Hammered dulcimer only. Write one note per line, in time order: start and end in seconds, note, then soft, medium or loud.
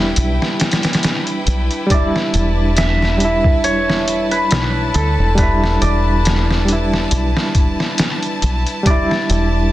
0.00 0.29 E5 loud
1.91 3.70 D5 loud
2.77 5.07 E5 loud
3.64 5.87 C#5 loud
4.31 5.38 B4 loud
4.95 7.87 A4 medium
5.38 8.11 B4 loud
5.81 8.28 D5 medium
8.87 9.72 D5 loud